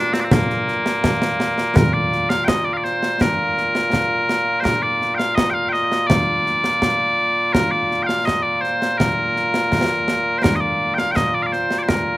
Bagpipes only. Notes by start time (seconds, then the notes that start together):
Already playing: A#2 A#3 D4 F4
0.13 C4
0.20 D4
0.24 C4
0.33 A#3
1.76 A#4
1.93 D5
2.29 F5
2.44 D#5 G5
2.65 D5
2.73 D5 F5
2.84 C5
3.21 A#4
4.60 A#4 C5
4.82 D5
5.15 F5 G5
5.35 D#5
5.50 F5 G5
5.69 D#5 G5
6.07 D5
7.53 A#4
7.71 D5
8.03 F5 G5
8.25 D#5
8.43 D5
8.61 C5
8.97 A#4
10.38 C5
10.43 A#4
10.55 D#5
10.60 D5
10.94 F5 G5
11.11 G5
11.16 D#5
11.34 D5
11.43 D5 F5
11.52 C5
11.78 D5
11.83 C5
11.88 A#4